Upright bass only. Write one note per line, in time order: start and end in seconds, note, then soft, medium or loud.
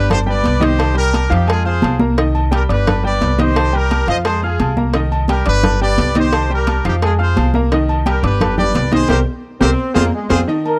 0.00 0.41 G1 loud
0.45 1.25 C2 medium
1.31 1.79 F2 loud
1.83 2.64 C2 loud
2.69 3.18 G1 loud
3.21 4.02 C2 medium
4.07 4.56 F2 medium
4.59 5.40 C2 loud
5.47 5.95 G1 loud
5.98 6.79 C2 medium
6.85 7.33 F2 loud
7.37 8.17 C2 medium
8.23 8.71 G1 loud
8.75 9.07 C2 loud
9.09 9.22 C2 loud
9.61 9.74 C2 loud
9.96 10.09 F2 medium
10.31 10.43 F2 medium